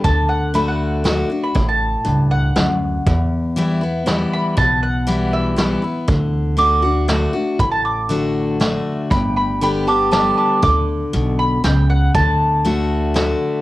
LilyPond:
<<
  \new Staff \with { instrumentName = "Mandolin" } { \time 3/4 \key d \major \tempo 4 = 119 a''8 fis''8 b''16 fis''4. b''16~ | b''16 a''4~ a''16 fis''4.~ | fis''8 r2 b''8 | a''8 fis''4 e''4 r8 |
r4 d'''2 | b''16 a''16 d'''8 r2 | <g'' b''>8 <g'' b''>8 <g'' b''>8 <a'' d'''>8 <a'' d'''>8 <a'' d'''>8 | d'''8 r4 b''8 g''8 fis''8 |
a''2. | }
  \new Staff \with { instrumentName = "Steel-string acoustic guitar" } { \time 3/4 \key d \major << { r4 <d a d' fis'>4 <d a d' fis'>8 <d' fis'>8 | r2. | r4 <e g b e'>8 <b e'>8 <e g b e'>4 | r4 <e g b e'>4 <e g b e'>8 <b e'>8 |
r4 <d a d' fis'>8 <d' fis'>8 <d a d' fis'>8 <d' fis'>8 | r4 <d a d' fis'>4 <d a d' fis'>4 | r4 <d g b g'>8 <b g'>8 <d g b g'>4 | r2. |
r4 <d a d' fis'>4 <d a d' fis'>4 | } \\ { d2 r4 | a,4 g,4 fis,4 | e,2 r4 | b,2 r4 |
d2 r4 | a,2 r4 | g,2 r4 | d4 b,4 cis4 |
d2 r4 | } >> }
  \new Staff \with { instrumentName = "Upright bass" } { \clef bass \time 3/4 \key d \major d,2. | a,,4 cis,4 d,4 | e,2. | b,,2. |
d,2. | a,,2. | g,,2. | d,4 b,,4 cis,4 |
d,2. | }
  \new DrumStaff \with { instrumentName = "Drums" } \drummode { \time 3/4 <hh bd>4 hh4 <hh sn>4 | <hh bd>4 hh4 <hh sn>4 | <hh bd>4 hh4 <hh sn>4 | <hh bd>4 hh4 <hh sn>4 |
<hh bd>4 hh4 <hh sn>4 | <hh bd>4 hh4 <hh sn>4 | <hh bd>4 hh4 <hh sn>4 | <hh bd>4 hh4 <hh sn>4 |
<hh bd>4 hh4 <hh sn>4 | }
>>